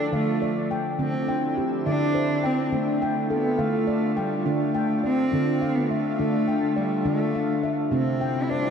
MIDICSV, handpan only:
0, 0, Header, 1, 2, 480
1, 0, Start_track
1, 0, Key_signature, -1, "minor"
1, 0, Tempo, 577478
1, 824, Time_signature, 6, 3, 24, 8
1, 7232, End_track
2, 0, Start_track
2, 0, Title_t, "Handpan"
2, 0, Program_c, 0, 114
2, 0, Note_on_c, 0, 69, 65
2, 0, Note_on_c, 0, 79, 53
2, 106, Note_on_c, 0, 50, 74
2, 109, Note_on_c, 0, 77, 57
2, 346, Note_off_c, 0, 69, 0
2, 347, Note_off_c, 0, 79, 0
2, 348, Note_on_c, 0, 74, 64
2, 590, Note_on_c, 0, 79, 58
2, 663, Note_off_c, 0, 50, 0
2, 825, Note_on_c, 0, 50, 79
2, 826, Note_off_c, 0, 74, 0
2, 827, Note_off_c, 0, 77, 0
2, 828, Note_on_c, 0, 60, 66
2, 1058, Note_off_c, 0, 79, 0
2, 1068, Note_on_c, 0, 79, 58
2, 1307, Note_off_c, 0, 60, 0
2, 1308, Note_on_c, 0, 67, 65
2, 1383, Note_off_c, 0, 50, 0
2, 1548, Note_on_c, 0, 76, 61
2, 1549, Note_on_c, 0, 50, 81
2, 1785, Note_on_c, 0, 72, 64
2, 1787, Note_off_c, 0, 67, 0
2, 1787, Note_off_c, 0, 79, 0
2, 2025, Note_on_c, 0, 79, 59
2, 2106, Note_off_c, 0, 50, 0
2, 2263, Note_on_c, 0, 50, 75
2, 2265, Note_off_c, 0, 72, 0
2, 2265, Note_on_c, 0, 62, 69
2, 2267, Note_off_c, 0, 76, 0
2, 2500, Note_off_c, 0, 79, 0
2, 2510, Note_on_c, 0, 79, 62
2, 2746, Note_off_c, 0, 62, 0
2, 2746, Note_on_c, 0, 69, 67
2, 2822, Note_off_c, 0, 50, 0
2, 2980, Note_on_c, 0, 77, 58
2, 2983, Note_on_c, 0, 50, 68
2, 3220, Note_on_c, 0, 74, 63
2, 3226, Note_off_c, 0, 69, 0
2, 3228, Note_off_c, 0, 79, 0
2, 3463, Note_on_c, 0, 79, 58
2, 3542, Note_off_c, 0, 50, 0
2, 3703, Note_off_c, 0, 74, 0
2, 3703, Note_off_c, 0, 77, 0
2, 3704, Note_on_c, 0, 62, 72
2, 3708, Note_on_c, 0, 50, 77
2, 3934, Note_off_c, 0, 79, 0
2, 3944, Note_on_c, 0, 79, 60
2, 4185, Note_off_c, 0, 62, 0
2, 4186, Note_on_c, 0, 74, 58
2, 4265, Note_off_c, 0, 50, 0
2, 4422, Note_on_c, 0, 62, 73
2, 4431, Note_on_c, 0, 50, 86
2, 4665, Note_off_c, 0, 79, 0
2, 4668, Note_on_c, 0, 77, 58
2, 4904, Note_off_c, 0, 62, 0
2, 4906, Note_off_c, 0, 74, 0
2, 4907, Note_on_c, 0, 76, 59
2, 4987, Note_off_c, 0, 50, 0
2, 5147, Note_on_c, 0, 62, 68
2, 5149, Note_on_c, 0, 50, 79
2, 5383, Note_on_c, 0, 79, 56
2, 5387, Note_off_c, 0, 77, 0
2, 5622, Note_on_c, 0, 74, 57
2, 5626, Note_off_c, 0, 62, 0
2, 5627, Note_off_c, 0, 76, 0
2, 5705, Note_off_c, 0, 50, 0
2, 5863, Note_on_c, 0, 50, 83
2, 5863, Note_on_c, 0, 62, 73
2, 6105, Note_off_c, 0, 79, 0
2, 6109, Note_on_c, 0, 77, 52
2, 6344, Note_off_c, 0, 62, 0
2, 6344, Note_off_c, 0, 74, 0
2, 6345, Note_on_c, 0, 76, 58
2, 6422, Note_off_c, 0, 50, 0
2, 6577, Note_on_c, 0, 48, 77
2, 6585, Note_on_c, 0, 60, 74
2, 6825, Note_off_c, 0, 76, 0
2, 6825, Note_on_c, 0, 79, 65
2, 6827, Note_off_c, 0, 77, 0
2, 7065, Note_off_c, 0, 60, 0
2, 7070, Note_on_c, 0, 72, 58
2, 7138, Note_off_c, 0, 48, 0
2, 7232, Note_off_c, 0, 72, 0
2, 7232, Note_off_c, 0, 79, 0
2, 7232, End_track
0, 0, End_of_file